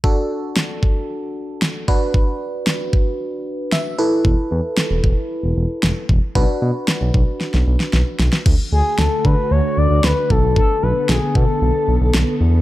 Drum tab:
CC |----------------|----------------|----------------|----------------|
SD |----o-------o---|----o-------o---|----o-------o---|----o---oo-oo-oo|
BD |o-----o-------o-|o-----o---------|o-----o-------o-|o-----o---------|

CC |x---------------|----------------|
SD |----o-------o---|----o-------o---|
BD |o-----o-------o-|o-----o---------|